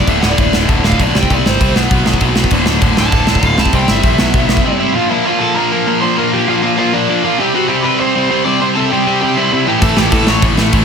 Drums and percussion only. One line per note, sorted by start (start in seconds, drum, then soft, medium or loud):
0.07 kick loud
0.07 crash medium
0.23 snare loud
0.38 kick loud
0.38 crash medium
0.53 snare loud
0.69 kick loud
0.69 crash medium
0.84 snare loud
0.92 kick medium
1.00 kick loud
1.00 crash medium
1.15 snare loud
1.23 kick medium
1.30 kick medium
1.30 crash medium
1.46 snare loud
1.61 kick loud
1.61 crash medium
1.76 snare loud
1.91 kick loud
1.91 crash medium
2.06 snare loud
2.13 kick medium
2.20 kick medium
2.20 crash medium
2.36 snare loud
2.44 kick medium
2.51 kick loud
2.51 crash medium
2.66 snare loud
2.81 kick loud
2.81 crash medium
2.97 snare loud
3.12 kick loud
3.12 crash medium
3.27 snare loud
3.35 kick medium
3.43 kick loud
3.43 crash medium
3.58 snare loud
3.65 kick medium
3.73 kick loud
3.73 crash medium
3.88 snare loud
4.03 kick loud
4.03 crash medium
4.18 snare loud
4.34 kick loud
4.34 crash medium
4.49 snare loud
4.57 kick medium
9.82 kick loud
9.82 crash medium
9.97 snare loud
10.12 kick loud
10.12 crash medium
10.27 snare loud
10.42 kick loud
10.42 crash medium
10.58 snare loud
10.73 kick loud
10.73 crash medium